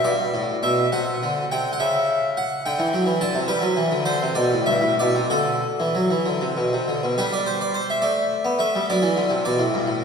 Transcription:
0.04 G2 D5
0.34 A2
0.63 B2 E5
0.92 C3 F#5
1.23 D3
1.52 C3 G5
1.73 F#5
1.80 C#3 E5
2.37 F#5
2.66 D3 G5
2.79 E3
2.94 F#3
3.06 E3
3.21 D3 A5
3.35 C3
3.48 G3 B4
3.61 F#3
3.77 E3
3.91 D3
4.05 D3 C5
4.22 C3
4.35 B2 D5
4.53 A2
4.66 G2 E5
4.81 A2
4.99 B2 D5
5.15 C3
5.30 D3 A4
5.80 E3
5.95 F#3
6.11 E3
6.26 D3
6.41 C3
6.57 B2
6.73 C3
6.88 D3
7.03 B2
7.18 G3 D4 B4
7.33 D5
7.46 C5
7.61 D5
7.74 C5
7.90 E5
8.02 A3 D5
8.45 B3
8.59 A3 E5
8.75 G3
8.90 F#3 D4 D5
9.02 E3
9.17 D3
9.30 C3
9.45 B2 D5
9.59 A2
9.74 G2
9.88 A2

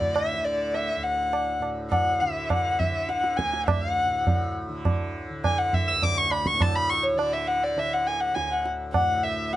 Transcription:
Already playing: D2 A2 D3 D5
0.01 tabla ge
0.15 E5, tabla na
0.35 D3
0.44 D5
0.74 E5, tabla tin
0.97 D2
1.03 F#5
1.33 tabla na
1.60 A2, tabla na
1.91 F#5, tabla na, tabla ge
2.20 D3 E5, tabla te
2.49 F#5, tabla na, tabla ge
2.79 D3 E5, tabla ge
3.08 F#5, tabla te
3.24 tabla te
3.37 G#5, tabla ke
3.45 D2
3.53 tabla te
3.66 E5, tabla na, tabla ge
3.91 F#5
4.06 A2
4.27 tabla tin, tabla ge
4.68 D3
4.85 tabla na, tabla ge
5.29 D3
5.44 G#5, tabla na, tabla ge
5.58 F#5
5.73 E5, tabla ge
5.88 D2 E6
6.02 D6, tabla tin, tabla ge
6.18 C#6
6.31 B5, tabla na
6.46 C#6, tabla ke
6.53 A2
6.61 A5, tabla na, tabla ge
6.75 B5
6.90 C#6
7.04 C#5
7.14 D3 D5
7.19 tabla na
7.33 E5
7.48 F#5
7.64 D5
7.76 D3 E5, tabla tin
7.94 F#5
8.07 G#5
8.20 F#5
8.35 D2 G#5, tabla te
8.47 F#5 G#5
8.66 tabla te
8.93 F#5, tabla na, tabla ge
8.98 A2
9.23 E5
9.53 F#5, tabla te

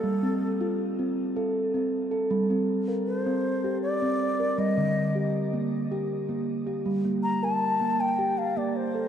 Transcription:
Already playing: A4
0.04 G3
0.23 C4
0.61 F4
0.99 C4
1.36 A4
1.74 C4
2.11 A4
2.30 G3
2.50 C4
2.88 A#4
3.07 B4
3.18 C5
3.27 C4
3.64 G4
3.83 D5
4.02 C4
4.40 A#4
4.58 G3 D#5
4.77 D3
5.15 G4
5.53 A#3
5.92 G4
6.29 A#3
6.67 G4
6.86 G3
7.05 A#3
7.23 A#5
7.43 A#4 A5
7.81 A#3
8.00 G5
8.19 G4
8.38 F5
8.57 A#3 D5
8.76 C5
8.95 A4

